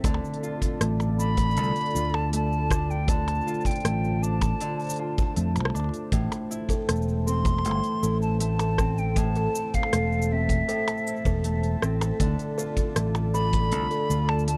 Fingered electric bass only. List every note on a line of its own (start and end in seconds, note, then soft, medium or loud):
0.04 0.19 D2 loud
0.81 1.57 A1 medium
1.57 1.71 C2 medium
1.95 3.39 D2 medium
3.85 4.53 A1 medium
5.37 5.57 F2 medium
5.56 5.70 C2 medium
5.75 5.89 D2 medium
6.12 6.27 A1 medium
6.89 7.65 E1 medium
7.65 7.79 G1 loud
8.03 9.47 A1 loud
9.93 10.61 E1 medium
11.25 11.75 E1 loud
11.82 12.11 A1 medium
12.20 12.34 D2 loud
12.96 13.72 A1 medium
13.72 13.86 C2 medium
14.10 14.57 D2 loud